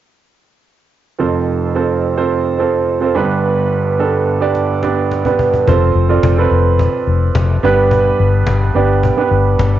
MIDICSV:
0, 0, Header, 1, 4, 480
1, 0, Start_track
1, 0, Tempo, 560748
1, 1017, Time_signature, 4, 2, 24, 8
1, 8385, End_track
2, 0, Start_track
2, 0, Title_t, "Grand piano"
2, 0, Program_c, 0, 0
2, 1015, Note_on_c, 0, 60, 57
2, 1017, Note_on_c, 0, 65, 54
2, 1021, Note_on_c, 0, 41, 53
2, 1022, Note_on_c, 0, 29, 52
2, 1026, Note_on_c, 0, 69, 58
2, 1028, Note_on_c, 0, 72, 65
2, 1168, Control_c, 0, 64, 127
2, 1455, Note_off_c, 0, 60, 0
2, 1456, Note_off_c, 0, 65, 0
2, 1461, Note_off_c, 0, 69, 0
2, 1462, Note_off_c, 0, 72, 0
2, 1497, Note_on_c, 0, 60, 66
2, 1499, Note_on_c, 0, 65, 52
2, 1504, Note_on_c, 0, 69, 57
2, 1508, Note_on_c, 0, 72, 61
2, 1826, Note_off_c, 0, 60, 0
2, 1827, Note_off_c, 0, 65, 0
2, 1830, Note_off_c, 0, 69, 0
2, 1832, Note_off_c, 0, 72, 0
2, 1855, Note_on_c, 0, 60, 61
2, 1860, Note_on_c, 0, 65, 55
2, 1862, Note_on_c, 0, 69, 57
2, 1863, Note_on_c, 0, 72, 74
2, 2186, Note_off_c, 0, 60, 0
2, 2188, Note_off_c, 0, 65, 0
2, 2189, Note_off_c, 0, 69, 0
2, 2190, Note_off_c, 0, 72, 0
2, 2210, Note_on_c, 0, 60, 65
2, 2216, Note_on_c, 0, 65, 56
2, 2223, Note_on_c, 0, 69, 60
2, 2227, Note_on_c, 0, 72, 64
2, 2543, Note_off_c, 0, 60, 0
2, 2546, Note_off_c, 0, 65, 0
2, 2550, Note_off_c, 0, 69, 0
2, 2552, Note_off_c, 0, 72, 0
2, 2573, Note_on_c, 0, 60, 63
2, 2575, Note_on_c, 0, 65, 55
2, 2582, Note_on_c, 0, 69, 56
2, 2584, Note_on_c, 0, 72, 63
2, 2666, Note_off_c, 0, 41, 0
2, 2667, Note_off_c, 0, 29, 0
2, 2692, Note_on_c, 0, 59, 76
2, 2694, Note_on_c, 0, 62, 73
2, 2696, Note_off_c, 0, 60, 0
2, 2697, Note_off_c, 0, 65, 0
2, 2698, Note_on_c, 0, 31, 61
2, 2699, Note_on_c, 0, 43, 67
2, 2701, Note_off_c, 0, 69, 0
2, 2701, Note_on_c, 0, 67, 70
2, 2702, Note_off_c, 0, 72, 0
2, 2706, Note_on_c, 0, 71, 78
2, 2709, Control_c, 0, 64, 0
2, 2868, Control_c, 0, 64, 127
2, 3353, Note_off_c, 0, 59, 0
2, 3354, Note_off_c, 0, 62, 0
2, 3357, Note_off_c, 0, 67, 0
2, 3360, Note_off_c, 0, 71, 0
2, 3413, Note_on_c, 0, 59, 62
2, 3417, Note_on_c, 0, 62, 59
2, 3419, Note_on_c, 0, 67, 54
2, 3422, Note_on_c, 0, 69, 70
2, 3745, Note_off_c, 0, 59, 0
2, 3747, Note_off_c, 0, 62, 0
2, 3748, Note_off_c, 0, 67, 0
2, 3750, Note_off_c, 0, 69, 0
2, 3770, Note_on_c, 0, 59, 58
2, 3773, Note_on_c, 0, 62, 55
2, 3776, Note_on_c, 0, 67, 62
2, 3782, Note_on_c, 0, 74, 77
2, 4103, Note_off_c, 0, 59, 0
2, 4105, Note_off_c, 0, 62, 0
2, 4106, Note_off_c, 0, 67, 0
2, 4109, Note_off_c, 0, 74, 0
2, 4130, Note_on_c, 0, 59, 66
2, 4132, Note_on_c, 0, 62, 63
2, 4137, Note_on_c, 0, 67, 61
2, 4141, Note_on_c, 0, 74, 73
2, 4463, Note_off_c, 0, 59, 0
2, 4465, Note_off_c, 0, 62, 0
2, 4467, Note_off_c, 0, 67, 0
2, 4469, Note_off_c, 0, 74, 0
2, 4494, Note_on_c, 0, 59, 67
2, 4499, Note_on_c, 0, 62, 53
2, 4502, Note_on_c, 0, 67, 50
2, 4508, Note_on_c, 0, 71, 63
2, 4584, Note_off_c, 0, 31, 0
2, 4585, Note_off_c, 0, 43, 0
2, 4825, Note_off_c, 0, 59, 0
2, 4828, Note_off_c, 0, 62, 0
2, 4829, Note_off_c, 0, 67, 0
2, 4832, Note_off_c, 0, 71, 0
2, 4850, Note_on_c, 0, 60, 67
2, 4855, Note_on_c, 0, 65, 65
2, 4861, Note_on_c, 0, 72, 80
2, 4862, Note_on_c, 0, 69, 63
2, 4868, Control_c, 0, 64, 0
2, 5021, Control_c, 0, 64, 127
2, 5183, Note_off_c, 0, 60, 0
2, 5186, Note_off_c, 0, 65, 0
2, 5188, Note_off_c, 0, 72, 0
2, 5189, Note_off_c, 0, 69, 0
2, 5211, Note_on_c, 0, 60, 61
2, 5213, Note_on_c, 0, 65, 65
2, 5218, Note_on_c, 0, 69, 59
2, 5222, Note_on_c, 0, 74, 69
2, 5434, Note_off_c, 0, 60, 0
2, 5435, Note_off_c, 0, 65, 0
2, 5437, Note_off_c, 0, 69, 0
2, 5440, Note_off_c, 0, 74, 0
2, 5460, Note_on_c, 0, 60, 63
2, 5462, Note_on_c, 0, 65, 59
2, 5466, Note_on_c, 0, 69, 64
2, 5471, Note_on_c, 0, 71, 74
2, 6336, Note_off_c, 0, 60, 0
2, 6337, Note_off_c, 0, 65, 0
2, 6338, Note_off_c, 0, 69, 0
2, 6341, Note_off_c, 0, 71, 0
2, 6532, Note_on_c, 0, 59, 83
2, 6537, Note_on_c, 0, 62, 68
2, 6539, Note_on_c, 0, 43, 65
2, 6543, Note_on_c, 0, 67, 75
2, 6546, Note_on_c, 0, 71, 93
2, 6548, Control_c, 0, 64, 0
2, 6706, Control_c, 0, 64, 127
2, 7224, Note_off_c, 0, 43, 0
2, 7411, Note_off_c, 0, 59, 0
2, 7414, Note_off_c, 0, 62, 0
2, 7417, Note_off_c, 0, 67, 0
2, 7418, Note_off_c, 0, 71, 0
2, 7487, Note_on_c, 0, 59, 72
2, 7492, Note_on_c, 0, 62, 61
2, 7497, Note_on_c, 0, 67, 68
2, 7499, Note_on_c, 0, 74, 65
2, 7821, Note_off_c, 0, 59, 0
2, 7823, Note_off_c, 0, 62, 0
2, 7826, Note_off_c, 0, 67, 0
2, 7827, Note_off_c, 0, 74, 0
2, 7848, Note_on_c, 0, 59, 63
2, 7853, Note_on_c, 0, 62, 60
2, 7857, Note_on_c, 0, 67, 56
2, 7858, Note_on_c, 0, 71, 70
2, 8385, Note_off_c, 0, 59, 0
2, 8385, Note_off_c, 0, 62, 0
2, 8385, Note_off_c, 0, 67, 0
2, 8385, Note_off_c, 0, 71, 0
2, 8385, End_track
3, 0, Start_track
3, 0, Title_t, "Fingered electric bass"
3, 0, Program_c, 1, 33
3, 4858, Note_on_c, 1, 29, 88
3, 5055, Note_off_c, 1, 29, 0
3, 5092, Note_on_c, 1, 29, 75
3, 5292, Note_off_c, 1, 29, 0
3, 5335, Note_on_c, 1, 29, 85
3, 5533, Note_off_c, 1, 29, 0
3, 5572, Note_on_c, 1, 29, 82
3, 5870, Note_off_c, 1, 29, 0
3, 6053, Note_on_c, 1, 29, 63
3, 6252, Note_off_c, 1, 29, 0
3, 6292, Note_on_c, 1, 29, 83
3, 6491, Note_off_c, 1, 29, 0
3, 6534, Note_on_c, 1, 31, 71
3, 6929, Note_off_c, 1, 31, 0
3, 7017, Note_on_c, 1, 31, 87
3, 7214, Note_off_c, 1, 31, 0
3, 7252, Note_on_c, 1, 31, 89
3, 7451, Note_off_c, 1, 31, 0
3, 7494, Note_on_c, 1, 31, 68
3, 7791, Note_off_c, 1, 31, 0
3, 7971, Note_on_c, 1, 31, 77
3, 8171, Note_off_c, 1, 31, 0
3, 8212, Note_on_c, 1, 31, 93
3, 8385, Note_off_c, 1, 31, 0
3, 8385, End_track
4, 0, Start_track
4, 0, Title_t, "Cajon"
4, 3893, Note_on_c, 9, 38, 44
4, 3979, Note_off_c, 9, 38, 0
4, 4132, Note_on_c, 9, 38, 53
4, 4217, Note_off_c, 9, 38, 0
4, 4378, Note_on_c, 9, 38, 62
4, 4463, Note_off_c, 9, 38, 0
4, 4494, Note_on_c, 9, 36, 52
4, 4580, Note_off_c, 9, 36, 0
4, 4614, Note_on_c, 9, 36, 78
4, 4699, Note_off_c, 9, 36, 0
4, 4738, Note_on_c, 9, 36, 64
4, 4823, Note_off_c, 9, 36, 0
4, 4857, Note_on_c, 9, 36, 87
4, 4943, Note_off_c, 9, 36, 0
4, 5099, Note_on_c, 9, 38, 33
4, 5184, Note_off_c, 9, 38, 0
4, 5335, Note_on_c, 9, 36, 84
4, 5335, Note_on_c, 9, 38, 96
4, 5420, Note_off_c, 9, 38, 0
4, 5421, Note_off_c, 9, 36, 0
4, 5579, Note_on_c, 9, 38, 32
4, 5665, Note_off_c, 9, 38, 0
4, 5815, Note_on_c, 9, 36, 89
4, 5901, Note_off_c, 9, 36, 0
4, 6052, Note_on_c, 9, 38, 37
4, 6138, Note_off_c, 9, 38, 0
4, 6292, Note_on_c, 9, 38, 109
4, 6293, Note_on_c, 9, 36, 85
4, 6378, Note_off_c, 9, 38, 0
4, 6379, Note_off_c, 9, 36, 0
4, 6539, Note_on_c, 9, 38, 35
4, 6624, Note_off_c, 9, 38, 0
4, 6773, Note_on_c, 9, 36, 94
4, 6859, Note_off_c, 9, 36, 0
4, 7015, Note_on_c, 9, 38, 35
4, 7101, Note_off_c, 9, 38, 0
4, 7248, Note_on_c, 9, 38, 92
4, 7252, Note_on_c, 9, 36, 96
4, 7333, Note_off_c, 9, 38, 0
4, 7337, Note_off_c, 9, 36, 0
4, 7495, Note_on_c, 9, 38, 30
4, 7581, Note_off_c, 9, 38, 0
4, 7733, Note_on_c, 9, 36, 87
4, 7819, Note_off_c, 9, 36, 0
4, 7970, Note_on_c, 9, 38, 37
4, 8055, Note_off_c, 9, 38, 0
4, 8212, Note_on_c, 9, 36, 83
4, 8213, Note_on_c, 9, 38, 110
4, 8297, Note_off_c, 9, 36, 0
4, 8299, Note_off_c, 9, 38, 0
4, 8385, End_track
0, 0, End_of_file